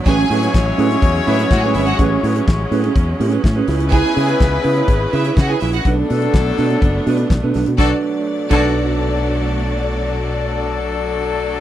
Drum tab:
CC |----------------|----------------|----------------|----------------|
HH |x-oxx-oxx-oxx-ox|x-oxx-oxx-oxx-ox|x-oxx-oxx-oxx-ox|x-oxx-oxx-oxx-ox|
SD |----o-------o---|----o-------o-o-|----o-------o-o-|----o-------o-o-|
BD |o---o---o---o---|o---o---o---o---|o---o---o---o---|o---o---o---o---|

CC |------x---------|----------------|
HH |----------------|----------------|
SD |o---------------|----------------|
BD |o-----o---------|----------------|